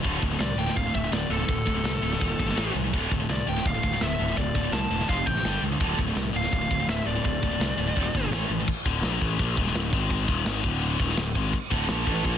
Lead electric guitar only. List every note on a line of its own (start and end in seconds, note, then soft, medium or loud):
0.40 0.57 D5 loud
0.58 0.75 G5 loud
0.76 0.94 F5 medium
0.95 1.12 E5 medium
1.13 1.31 D5 loud
1.30 2.71 A4 medium
3.31 3.47 D5 medium
3.49 3.66 G5 loud
3.67 4.02 F5 medium
4.02 4.35 E5 loud
4.37 4.70 D5 medium
4.72 5.09 A5 loud
5.09 5.26 F5 medium
5.26 5.62 G5 medium
6.37 6.86 F5 loud
6.89 7.06 E5 loud
7.07 7.23 D5 medium
7.25 8.28 D5 medium